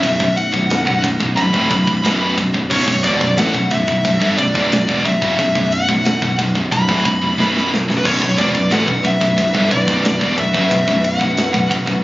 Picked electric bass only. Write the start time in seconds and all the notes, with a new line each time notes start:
0.03 B0
0.19 B0
0.54 B0
0.87 B0
1.04 B0
1.20 B0
1.37 B0
1.54 D1
1.70 B0
1.88 B0
2.03 B0
2.37 B0
2.54 B0
2.70 B0
2.88 B0
3.04 E1
3.21 B0
3.36 A1
3.54 B0
3.71 B0
3.87 B0
4.05 B0
4.22 G1
4.38 B0
4.55 B0
4.72 B0
4.89 E1
5.05 B0
5.22 F#1
5.39 B0
5.55 B0
5.88 B0
6.22 B0
6.38 B0
6.55 B0
6.72 B0
6.89 D1
7.05 B0
7.21 B0
7.37 B0
7.72 B0
7.89 B0
8.05 B0
8.22 B0
8.38 E1
8.55 B0
8.71 A1
8.88 B0
9.04 B0
9.21 B0
9.38 B0
9.55 G1
9.71 B0
9.88 B0
10.05 B0
10.21 E1
10.37 B0
10.54 F#1
10.71 B0
10.88 B0
11.21 B0
11.54 B0
11.70 B0
11.87 B0